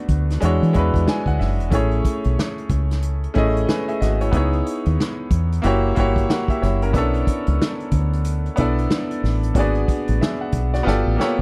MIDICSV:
0, 0, Header, 1, 4, 480
1, 0, Start_track
1, 0, Tempo, 652174
1, 1267, Time_signature, 4, 2, 24, 8
1, 8402, End_track
2, 0, Start_track
2, 0, Title_t, "Grand piano"
2, 0, Program_c, 0, 0
2, 0, Control_c, 0, 64, 127
2, 0, Note_on_c, 0, 57, 75
2, 0, Note_on_c, 0, 59, 69
2, 0, Note_on_c, 0, 62, 68
2, 0, Note_on_c, 0, 66, 71
2, 0, Note_on_c, 0, 71, 82
2, 77, Note_off_c, 0, 57, 0
2, 82, Note_off_c, 0, 59, 0
2, 85, Note_off_c, 0, 62, 0
2, 91, Note_off_c, 0, 66, 0
2, 95, Note_off_c, 0, 71, 0
2, 298, Note_on_c, 0, 56, 84
2, 306, Note_on_c, 0, 62, 77
2, 315, Note_on_c, 0, 64, 74
2, 316, Control_c, 0, 64, 0
2, 326, Note_on_c, 0, 66, 76
2, 332, Note_on_c, 0, 73, 88
2, 462, Control_c, 0, 64, 127
2, 505, Note_off_c, 0, 56, 0
2, 509, Note_off_c, 0, 62, 0
2, 514, Note_off_c, 0, 64, 0
2, 519, Note_off_c, 0, 66, 0
2, 522, Note_off_c, 0, 73, 0
2, 539, Note_on_c, 0, 56, 83
2, 547, Note_on_c, 0, 62, 68
2, 555, Note_on_c, 0, 64, 70
2, 559, Note_on_c, 0, 83, 65
2, 564, Note_on_c, 0, 66, 75
2, 577, Note_on_c, 0, 71, 87
2, 777, Note_off_c, 0, 83, 0
2, 797, Note_on_c, 0, 80, 74
2, 928, Note_off_c, 0, 80, 0
2, 938, Note_on_c, 0, 78, 66
2, 1023, Note_off_c, 0, 78, 0
2, 1026, Note_on_c, 0, 76, 61
2, 1107, Note_off_c, 0, 56, 0
2, 1111, Note_off_c, 0, 62, 0
2, 1115, Note_off_c, 0, 64, 0
2, 1120, Note_off_c, 0, 66, 0
2, 1126, Note_off_c, 0, 71, 0
2, 1250, Note_off_c, 0, 76, 0
2, 1253, Note_on_c, 0, 57, 75
2, 1260, Note_on_c, 0, 61, 75
2, 1270, Note_on_c, 0, 64, 70
2, 1277, Control_c, 0, 64, 0
2, 1278, Note_on_c, 0, 68, 73
2, 1287, Note_on_c, 0, 73, 86
2, 1402, Control_c, 0, 64, 127
2, 1994, Note_off_c, 0, 57, 0
2, 1998, Note_off_c, 0, 61, 0
2, 2003, Note_off_c, 0, 64, 0
2, 2007, Note_off_c, 0, 68, 0
2, 2011, Note_off_c, 0, 73, 0
2, 2458, Note_on_c, 0, 57, 91
2, 2464, Note_on_c, 0, 61, 82
2, 2472, Note_on_c, 0, 64, 76
2, 2482, Note_on_c, 0, 68, 80
2, 2490, Note_on_c, 0, 75, 99
2, 2710, Note_off_c, 0, 64, 0
2, 2712, Note_on_c, 0, 80, 60
2, 2713, Note_on_c, 0, 71, 53
2, 2715, Note_off_c, 0, 68, 0
2, 2718, Note_off_c, 0, 75, 0
2, 2849, Note_off_c, 0, 71, 0
2, 2849, Note_off_c, 0, 80, 0
2, 2857, Note_on_c, 0, 76, 65
2, 2860, Note_on_c, 0, 68, 55
2, 2944, Note_off_c, 0, 76, 0
2, 2946, Note_off_c, 0, 68, 0
2, 2948, Note_on_c, 0, 75, 67
2, 2954, Note_on_c, 0, 66, 53
2, 3026, Note_off_c, 0, 57, 0
2, 3029, Note_off_c, 0, 61, 0
2, 3087, Note_off_c, 0, 75, 0
2, 3090, Note_off_c, 0, 66, 0
2, 3100, Note_on_c, 0, 73, 69
2, 3107, Note_on_c, 0, 64, 57
2, 3176, Note_on_c, 0, 59, 77
2, 3184, Note_off_c, 0, 64, 0
2, 3185, Note_on_c, 0, 63, 69
2, 3195, Control_c, 0, 64, 0
2, 3195, Note_on_c, 0, 64, 73
2, 3202, Note_off_c, 0, 73, 0
2, 3202, Note_on_c, 0, 68, 67
2, 3213, Note_on_c, 0, 73, 81
2, 3319, Control_c, 0, 64, 127
2, 3916, Note_off_c, 0, 59, 0
2, 3921, Note_off_c, 0, 63, 0
2, 3925, Note_off_c, 0, 64, 0
2, 3929, Note_off_c, 0, 68, 0
2, 3934, Note_off_c, 0, 73, 0
2, 4136, Note_on_c, 0, 58, 88
2, 4146, Note_on_c, 0, 64, 87
2, 4153, Note_on_c, 0, 66, 86
2, 4157, Control_c, 0, 64, 0
2, 4163, Note_on_c, 0, 67, 86
2, 4171, Note_on_c, 0, 73, 100
2, 4287, Control_c, 0, 64, 127
2, 4344, Note_off_c, 0, 58, 0
2, 4349, Note_off_c, 0, 64, 0
2, 4352, Note_off_c, 0, 66, 0
2, 4357, Note_off_c, 0, 67, 0
2, 4361, Note_off_c, 0, 73, 0
2, 4379, Note_on_c, 0, 58, 85
2, 4387, Note_on_c, 0, 64, 85
2, 4398, Note_on_c, 0, 66, 83
2, 4404, Note_on_c, 0, 67, 79
2, 4415, Note_on_c, 0, 73, 100
2, 4627, Note_off_c, 0, 64, 0
2, 4632, Note_off_c, 0, 66, 0
2, 4636, Note_off_c, 0, 67, 0
2, 4637, Note_on_c, 0, 78, 58
2, 4641, Note_off_c, 0, 73, 0
2, 4641, Note_on_c, 0, 70, 49
2, 4771, Note_off_c, 0, 78, 0
2, 4773, Note_off_c, 0, 70, 0
2, 4782, Note_on_c, 0, 76, 75
2, 4790, Note_on_c, 0, 67, 57
2, 4867, Note_off_c, 0, 76, 0
2, 4871, Note_off_c, 0, 67, 0
2, 4874, Note_on_c, 0, 73, 68
2, 4879, Note_on_c, 0, 64, 51
2, 4947, Note_off_c, 0, 58, 0
2, 5010, Note_off_c, 0, 73, 0
2, 5013, Note_off_c, 0, 64, 0
2, 5024, Note_on_c, 0, 70, 71
2, 5027, Note_on_c, 0, 61, 54
2, 5102, Note_on_c, 0, 59, 77
2, 5109, Note_on_c, 0, 62, 74
2, 5116, Control_c, 0, 64, 0
2, 5119, Note_on_c, 0, 64, 74
2, 5125, Note_on_c, 0, 69, 79
2, 5136, Note_on_c, 0, 73, 84
2, 5227, Control_c, 0, 64, 127
2, 5247, Note_off_c, 0, 70, 0
2, 5249, Note_off_c, 0, 61, 0
2, 5839, Note_off_c, 0, 59, 0
2, 5842, Note_off_c, 0, 62, 0
2, 5847, Note_off_c, 0, 64, 0
2, 5850, Note_off_c, 0, 69, 0
2, 5856, Note_off_c, 0, 73, 0
2, 6299, Note_on_c, 0, 59, 79
2, 6308, Note_on_c, 0, 62, 76
2, 6316, Note_on_c, 0, 64, 77
2, 6326, Note_on_c, 0, 69, 77
2, 6333, Note_on_c, 0, 74, 87
2, 6867, Note_off_c, 0, 59, 0
2, 6871, Note_off_c, 0, 62, 0
2, 6875, Note_off_c, 0, 64, 0
2, 6880, Note_off_c, 0, 69, 0
2, 6884, Note_off_c, 0, 74, 0
2, 7023, Note_on_c, 0, 58, 62
2, 7032, Note_on_c, 0, 62, 75
2, 7035, Control_c, 0, 64, 0
2, 7037, Note_on_c, 0, 66, 68
2, 7049, Note_on_c, 0, 68, 76
2, 7059, Note_on_c, 0, 74, 91
2, 7067, Note_on_c, 0, 59, 76
2, 7084, Note_off_c, 0, 58, 0
2, 7158, Control_c, 0, 64, 127
2, 7506, Note_off_c, 0, 68, 0
2, 7512, Note_off_c, 0, 66, 0
2, 7517, Note_on_c, 0, 68, 52
2, 7517, Note_on_c, 0, 76, 64
2, 7523, Note_off_c, 0, 74, 0
2, 7651, Note_off_c, 0, 68, 0
2, 7652, Note_off_c, 0, 76, 0
2, 7662, Note_on_c, 0, 78, 60
2, 7764, Note_off_c, 0, 62, 0
2, 7782, Note_off_c, 0, 59, 0
2, 7886, Note_off_c, 0, 78, 0
2, 7902, Note_on_c, 0, 74, 69
2, 7909, Note_on_c, 0, 66, 56
2, 7973, Note_on_c, 0, 59, 88
2, 7980, Note_on_c, 0, 65, 87
2, 7992, Note_on_c, 0, 67, 83
2, 7996, Note_off_c, 0, 74, 0
2, 7996, Control_c, 0, 64, 0
2, 8000, Note_on_c, 0, 69, 91
2, 8008, Note_on_c, 0, 74, 93
2, 8129, Note_off_c, 0, 66, 0
2, 8131, Control_c, 0, 64, 127
2, 8182, Note_off_c, 0, 59, 0
2, 8186, Note_off_c, 0, 65, 0
2, 8192, Note_off_c, 0, 67, 0
2, 8196, Note_off_c, 0, 69, 0
2, 8200, Note_off_c, 0, 74, 0
2, 8213, Note_on_c, 0, 58, 65
2, 8223, Note_on_c, 0, 65, 75
2, 8231, Note_on_c, 0, 67, 82
2, 8240, Note_on_c, 0, 69, 76
2, 8249, Note_on_c, 0, 73, 94
2, 8260, Note_on_c, 0, 59, 84
2, 8279, Note_off_c, 0, 58, 0
2, 8402, Note_off_c, 0, 59, 0
2, 8402, Note_off_c, 0, 65, 0
2, 8402, Note_off_c, 0, 67, 0
2, 8402, Note_off_c, 0, 69, 0
2, 8402, Note_off_c, 0, 73, 0
2, 8402, End_track
3, 0, Start_track
3, 0, Title_t, "Fingered electric bass"
3, 0, Program_c, 1, 33
3, 67, Note_on_c, 1, 38, 88
3, 275, Note_off_c, 1, 38, 0
3, 313, Note_on_c, 1, 40, 97
3, 437, Note_off_c, 1, 40, 0
3, 460, Note_on_c, 1, 52, 90
3, 538, Note_off_c, 1, 52, 0
3, 559, Note_on_c, 1, 40, 75
3, 680, Note_off_c, 1, 40, 0
3, 696, Note_on_c, 1, 40, 85
3, 776, Note_off_c, 1, 40, 0
3, 932, Note_on_c, 1, 38, 73
3, 1013, Note_off_c, 1, 38, 0
3, 1033, Note_on_c, 1, 30, 81
3, 1176, Note_off_c, 1, 30, 0
3, 1176, Note_on_c, 1, 28, 75
3, 1256, Note_off_c, 1, 28, 0
3, 1266, Note_on_c, 1, 33, 93
3, 1474, Note_off_c, 1, 33, 0
3, 1660, Note_on_c, 1, 35, 76
3, 1738, Note_off_c, 1, 35, 0
3, 1989, Note_on_c, 1, 37, 90
3, 2403, Note_off_c, 1, 37, 0
3, 2479, Note_on_c, 1, 33, 78
3, 2681, Note_off_c, 1, 33, 0
3, 2955, Note_on_c, 1, 32, 80
3, 3159, Note_off_c, 1, 32, 0
3, 3189, Note_on_c, 1, 37, 108
3, 3395, Note_off_c, 1, 37, 0
3, 3580, Note_on_c, 1, 39, 94
3, 3658, Note_off_c, 1, 39, 0
3, 3908, Note_on_c, 1, 40, 82
3, 4115, Note_off_c, 1, 40, 0
3, 4154, Note_on_c, 1, 30, 108
3, 4359, Note_off_c, 1, 30, 0
3, 4400, Note_on_c, 1, 31, 93
3, 4602, Note_off_c, 1, 31, 0
3, 4879, Note_on_c, 1, 30, 99
3, 5113, Note_off_c, 1, 30, 0
3, 5113, Note_on_c, 1, 35, 99
3, 5318, Note_off_c, 1, 35, 0
3, 5504, Note_on_c, 1, 37, 86
3, 5580, Note_off_c, 1, 37, 0
3, 5832, Note_on_c, 1, 38, 83
3, 6245, Note_off_c, 1, 38, 0
3, 6322, Note_on_c, 1, 35, 81
3, 6523, Note_off_c, 1, 35, 0
3, 6798, Note_on_c, 1, 33, 85
3, 7000, Note_off_c, 1, 33, 0
3, 7032, Note_on_c, 1, 32, 96
3, 7237, Note_off_c, 1, 32, 0
3, 7425, Note_on_c, 1, 33, 90
3, 7501, Note_off_c, 1, 33, 0
3, 7753, Note_on_c, 1, 35, 76
3, 7958, Note_off_c, 1, 35, 0
3, 7998, Note_on_c, 1, 31, 90
3, 8120, Note_off_c, 1, 31, 0
3, 8143, Note_on_c, 1, 33, 84
3, 8220, Note_off_c, 1, 33, 0
3, 8402, End_track
4, 0, Start_track
4, 0, Title_t, "Drums"
4, 62, Note_on_c, 9, 42, 60
4, 65, Note_on_c, 9, 36, 81
4, 136, Note_off_c, 9, 42, 0
4, 138, Note_off_c, 9, 36, 0
4, 223, Note_on_c, 9, 42, 40
4, 225, Note_on_c, 9, 38, 35
4, 297, Note_off_c, 9, 42, 0
4, 299, Note_off_c, 9, 38, 0
4, 306, Note_on_c, 9, 42, 70
4, 379, Note_off_c, 9, 42, 0
4, 463, Note_on_c, 9, 42, 34
4, 537, Note_off_c, 9, 42, 0
4, 546, Note_on_c, 9, 42, 59
4, 554, Note_on_c, 9, 36, 77
4, 619, Note_off_c, 9, 42, 0
4, 628, Note_off_c, 9, 36, 0
4, 691, Note_on_c, 9, 36, 80
4, 701, Note_on_c, 9, 42, 50
4, 765, Note_off_c, 9, 36, 0
4, 775, Note_off_c, 9, 42, 0
4, 791, Note_on_c, 9, 38, 106
4, 865, Note_off_c, 9, 38, 0
4, 927, Note_on_c, 9, 36, 77
4, 934, Note_on_c, 9, 42, 35
4, 1001, Note_off_c, 9, 36, 0
4, 1008, Note_off_c, 9, 42, 0
4, 1033, Note_on_c, 9, 46, 43
4, 1036, Note_on_c, 9, 38, 28
4, 1107, Note_off_c, 9, 46, 0
4, 1110, Note_off_c, 9, 38, 0
4, 1178, Note_on_c, 9, 42, 42
4, 1251, Note_off_c, 9, 42, 0
4, 1263, Note_on_c, 9, 36, 111
4, 1264, Note_on_c, 9, 42, 88
4, 1337, Note_off_c, 9, 36, 0
4, 1338, Note_off_c, 9, 42, 0
4, 1408, Note_on_c, 9, 42, 27
4, 1482, Note_off_c, 9, 42, 0
4, 1507, Note_on_c, 9, 36, 81
4, 1508, Note_on_c, 9, 42, 70
4, 1580, Note_off_c, 9, 36, 0
4, 1581, Note_off_c, 9, 42, 0
4, 1651, Note_on_c, 9, 42, 44
4, 1724, Note_off_c, 9, 42, 0
4, 1761, Note_on_c, 9, 38, 113
4, 1834, Note_off_c, 9, 38, 0
4, 1898, Note_on_c, 9, 42, 33
4, 1972, Note_off_c, 9, 42, 0
4, 1982, Note_on_c, 9, 42, 61
4, 1984, Note_on_c, 9, 36, 86
4, 2056, Note_off_c, 9, 42, 0
4, 2058, Note_off_c, 9, 36, 0
4, 2142, Note_on_c, 9, 42, 48
4, 2144, Note_on_c, 9, 38, 36
4, 2216, Note_off_c, 9, 42, 0
4, 2218, Note_off_c, 9, 38, 0
4, 2226, Note_on_c, 9, 42, 66
4, 2299, Note_off_c, 9, 42, 0
4, 2382, Note_on_c, 9, 42, 36
4, 2456, Note_off_c, 9, 42, 0
4, 2464, Note_on_c, 9, 42, 54
4, 2474, Note_on_c, 9, 36, 83
4, 2538, Note_off_c, 9, 42, 0
4, 2548, Note_off_c, 9, 36, 0
4, 2624, Note_on_c, 9, 42, 48
4, 2698, Note_off_c, 9, 42, 0
4, 2714, Note_on_c, 9, 38, 106
4, 2787, Note_off_c, 9, 38, 0
4, 2859, Note_on_c, 9, 42, 34
4, 2933, Note_off_c, 9, 42, 0
4, 2957, Note_on_c, 9, 42, 61
4, 2960, Note_on_c, 9, 38, 28
4, 3031, Note_off_c, 9, 42, 0
4, 3033, Note_off_c, 9, 38, 0
4, 3097, Note_on_c, 9, 42, 42
4, 3170, Note_off_c, 9, 42, 0
4, 3185, Note_on_c, 9, 36, 115
4, 3186, Note_on_c, 9, 42, 73
4, 3258, Note_off_c, 9, 36, 0
4, 3260, Note_off_c, 9, 42, 0
4, 3333, Note_on_c, 9, 42, 27
4, 3407, Note_off_c, 9, 42, 0
4, 3433, Note_on_c, 9, 42, 70
4, 3507, Note_off_c, 9, 42, 0
4, 3574, Note_on_c, 9, 42, 43
4, 3648, Note_off_c, 9, 42, 0
4, 3683, Note_on_c, 9, 38, 107
4, 3756, Note_off_c, 9, 38, 0
4, 3905, Note_on_c, 9, 42, 67
4, 3906, Note_on_c, 9, 36, 81
4, 3979, Note_off_c, 9, 42, 0
4, 3980, Note_off_c, 9, 36, 0
4, 4066, Note_on_c, 9, 42, 40
4, 4139, Note_off_c, 9, 42, 0
4, 4147, Note_on_c, 9, 42, 71
4, 4221, Note_off_c, 9, 42, 0
4, 4387, Note_on_c, 9, 42, 65
4, 4396, Note_on_c, 9, 36, 86
4, 4460, Note_off_c, 9, 42, 0
4, 4470, Note_off_c, 9, 36, 0
4, 4534, Note_on_c, 9, 36, 81
4, 4545, Note_on_c, 9, 42, 46
4, 4608, Note_off_c, 9, 36, 0
4, 4618, Note_off_c, 9, 42, 0
4, 4635, Note_on_c, 9, 38, 95
4, 4709, Note_off_c, 9, 38, 0
4, 4772, Note_on_c, 9, 36, 81
4, 4782, Note_on_c, 9, 42, 35
4, 4845, Note_off_c, 9, 36, 0
4, 4855, Note_off_c, 9, 42, 0
4, 4881, Note_on_c, 9, 42, 57
4, 4884, Note_on_c, 9, 38, 28
4, 4955, Note_off_c, 9, 42, 0
4, 4958, Note_off_c, 9, 38, 0
4, 5020, Note_on_c, 9, 42, 44
4, 5094, Note_off_c, 9, 42, 0
4, 5108, Note_on_c, 9, 36, 98
4, 5110, Note_on_c, 9, 42, 74
4, 5182, Note_off_c, 9, 36, 0
4, 5183, Note_off_c, 9, 42, 0
4, 5255, Note_on_c, 9, 42, 31
4, 5329, Note_off_c, 9, 42, 0
4, 5352, Note_on_c, 9, 36, 80
4, 5354, Note_on_c, 9, 42, 72
4, 5425, Note_off_c, 9, 36, 0
4, 5427, Note_off_c, 9, 42, 0
4, 5496, Note_on_c, 9, 42, 49
4, 5569, Note_off_c, 9, 42, 0
4, 5605, Note_on_c, 9, 38, 115
4, 5679, Note_off_c, 9, 38, 0
4, 5742, Note_on_c, 9, 42, 31
4, 5816, Note_off_c, 9, 42, 0
4, 5825, Note_on_c, 9, 42, 73
4, 5828, Note_on_c, 9, 36, 78
4, 5899, Note_off_c, 9, 42, 0
4, 5902, Note_off_c, 9, 36, 0
4, 5986, Note_on_c, 9, 42, 42
4, 6059, Note_off_c, 9, 42, 0
4, 6069, Note_on_c, 9, 42, 69
4, 6143, Note_off_c, 9, 42, 0
4, 6225, Note_on_c, 9, 42, 35
4, 6299, Note_off_c, 9, 42, 0
4, 6306, Note_on_c, 9, 42, 63
4, 6318, Note_on_c, 9, 36, 82
4, 6379, Note_off_c, 9, 42, 0
4, 6392, Note_off_c, 9, 36, 0
4, 6466, Note_on_c, 9, 42, 50
4, 6539, Note_off_c, 9, 42, 0
4, 6554, Note_on_c, 9, 38, 107
4, 6627, Note_off_c, 9, 38, 0
4, 6703, Note_on_c, 9, 42, 36
4, 6776, Note_off_c, 9, 42, 0
4, 6802, Note_on_c, 9, 46, 46
4, 6805, Note_on_c, 9, 38, 28
4, 6876, Note_off_c, 9, 46, 0
4, 6879, Note_off_c, 9, 38, 0
4, 6942, Note_on_c, 9, 42, 47
4, 7015, Note_off_c, 9, 42, 0
4, 7029, Note_on_c, 9, 36, 112
4, 7029, Note_on_c, 9, 42, 81
4, 7103, Note_off_c, 9, 36, 0
4, 7103, Note_off_c, 9, 42, 0
4, 7174, Note_on_c, 9, 42, 28
4, 7248, Note_off_c, 9, 42, 0
4, 7273, Note_on_c, 9, 36, 84
4, 7275, Note_on_c, 9, 42, 71
4, 7347, Note_off_c, 9, 36, 0
4, 7349, Note_off_c, 9, 42, 0
4, 7416, Note_on_c, 9, 42, 47
4, 7490, Note_off_c, 9, 42, 0
4, 7525, Note_on_c, 9, 38, 107
4, 7599, Note_off_c, 9, 38, 0
4, 7745, Note_on_c, 9, 42, 71
4, 7749, Note_on_c, 9, 36, 87
4, 7819, Note_off_c, 9, 42, 0
4, 7823, Note_off_c, 9, 36, 0
4, 7906, Note_on_c, 9, 42, 45
4, 7908, Note_on_c, 9, 38, 34
4, 7980, Note_off_c, 9, 42, 0
4, 7982, Note_off_c, 9, 38, 0
4, 8006, Note_on_c, 9, 38, 51
4, 8079, Note_off_c, 9, 38, 0
4, 8242, Note_on_c, 9, 38, 61
4, 8316, Note_off_c, 9, 38, 0
4, 8402, End_track
0, 0, End_of_file